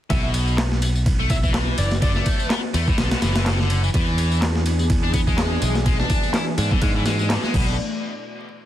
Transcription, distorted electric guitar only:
0.10 B2
1.20 A3
1.30 F#3
1.43 E3
2.02 D3
2.15 A3
2.50 B3
2.74 A3
2.87 A2
2.98 D3
3.12 B2
3.22 E3
3.36 E3
3.46 A2
3.60 D3
3.84 E3
3.94 E3
5.04 D4
5.14 B3
5.27 G#3
5.86 G#3
5.99 D4
6.34 E4
6.58 D4
6.71 D3
6.82 G#3
6.95 E3
7.06 G#3
7.19 G#3
7.30 D3
7.43 G#3
7.54 B2

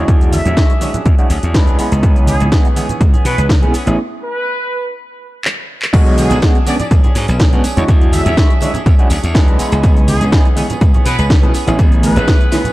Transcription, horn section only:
0.33 E5
2.28 G#4
3.25 B4
4.23 B4
6.18 G#4
6.67 D5
6.80 D5
8.13 E5
10.08 G#4
11.06 B4
12.03 B4

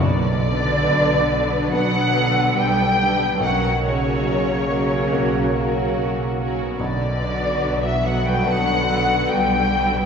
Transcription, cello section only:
0.03 D3
1.73 F#3
2.57 G3
3.41 F#3
3.84 C#3
6.79 D3
7.84 E3
8.05 F#3
8.26 G3
8.46 F#3
9.30 G3

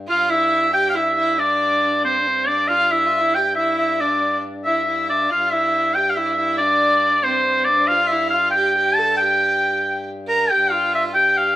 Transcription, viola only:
0.08 F4
0.30 E4
0.73 G4
0.95 E4
1.17 E4
1.38 D4
2.04 C4
2.21 D4
2.27 C4
2.48 D4
2.70 F4
2.91 E4
3.06 F4
3.21 E4
3.36 G4
3.57 E4
4.01 D4
4.66 E4
4.87 E4
5.10 D4
5.31 F4
5.53 E4
5.96 G4
6.17 E4
6.38 E4
6.60 D4
7.26 C4
7.48 C4
7.69 D4
7.91 F4
8.12 E4
8.33 F4
8.56 G4
8.77 G4
8.98 A4
9.20 G4
10.27 A#4
10.50 G4
10.72 F4
11.15 G4

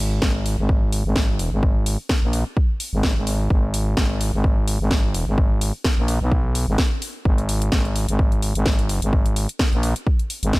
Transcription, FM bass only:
Already playing: G#1
0.22 G#1
0.59 G#1
1.05 G#1
1.52 G#1
2.23 A#1
2.93 G#1
3.16 G#1
3.50 G#1
3.97 G#1
4.34 G#1
4.80 G#1
5.27 G#1
5.98 A#1
6.21 B1
6.68 G#1
7.25 G#1
7.72 G#1
8.09 G#1
8.55 G#1
9.02 G#1
9.73 A#1
10.43 G#1

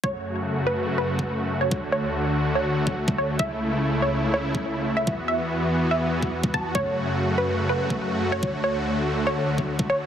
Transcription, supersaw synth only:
0.04 F#2 C#3 A3 F#4
1.71 D2 D3 A3 F#4
3.39 C#2 C#3 E4
5.07 E2 E3 B3 F#4
6.75 F#2 C#3 A3
8.43 D2 D3

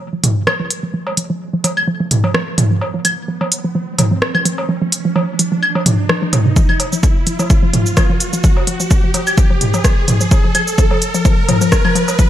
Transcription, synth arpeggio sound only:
0.13 F3
0.24 F3
0.47 F3
0.60 F3
0.83 F3
0.94 F3
1.17 F3
1.30 F3
1.53 F3
1.64 F3
1.88 F3
2.00 F3
2.24 F3
2.34 F3
2.58 F3
2.71 F3
2.94 F3
3.05 F3
3.28 F3
3.41 F3
3.64 F3
3.75 F3
3.99 F3
4.11 F3
4.35 F3
4.45 F3
4.69 F3
4.82 F3
5.05 F3
5.16 F3
5.39 F3
5.52 F3
5.75 F3
5.86 F3
6.10 F3
6.22 F3
6.46 C3
6.56 F3
6.69 F3
6.93 F3
7.03 F3
7.27 F3
7.39 F3
7.63 F3
7.73 F3
7.97 F3
8.10 F3
8.33 F3
8.44 F3
8.67 F3
8.80 F3
9.03 F3
9.14 F3
9.38 F3
9.50 F3
9.74 F3
9.84 F3
10.08 F3
10.21 F3
10.44 F3
10.55 F3
10.78 F3
10.91 F3
11.14 F3
11.25 F3
11.49 F3
11.61 F3
11.85 F3
11.95 F3
12.19 F3

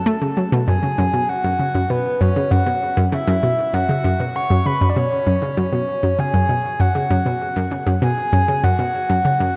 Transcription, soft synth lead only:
Already playing: A5
0.68 G#5
1.29 F#5
1.90 B4
2.21 C#5
2.51 F#5
3.13 E5
3.74 F#5
4.36 C#6
4.66 B5
4.89 D5
4.97 C#5
5.58 C#5
6.20 G#5
6.81 F#5
8.03 G#5
8.64 F#5
9.25 F#5

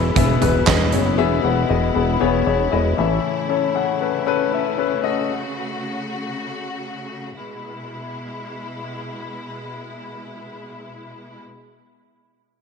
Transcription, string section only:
Already playing: B2 G#3 E4
2.98 C#3 A3
5.04 F#4
7.35 B2 G#3 E4

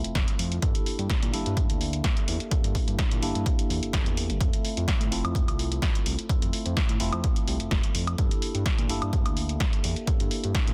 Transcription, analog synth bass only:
0.04 F1
0.15 F1
0.39 F2
0.62 G2
0.99 G2
1.23 A#2
1.34 G1
1.46 G2
1.57 G2
1.70 D2
2.28 E2
2.51 G2
2.64 G2
2.88 G2
3.12 A#2
3.23 G1
3.35 G2
3.70 E2
3.82 G1
3.93 G1
4.06 E2
4.30 G1
4.41 F2
4.77 F2
5.00 A2
5.11 F1
5.24 F2
5.48 C2
6.06 C2
6.29 F2
6.42 F2
6.66 F2
6.89 A2
7.01 F1
7.13 F2
7.48 C2
7.60 F1
7.71 F1
7.95 F2
8.18 G2
8.55 G2
8.78 A#2
8.90 G1
9.02 G2
9.13 G2
9.26 D2
9.84 E2
10.07 G2
10.21 G2
10.44 G2
10.68 A#2

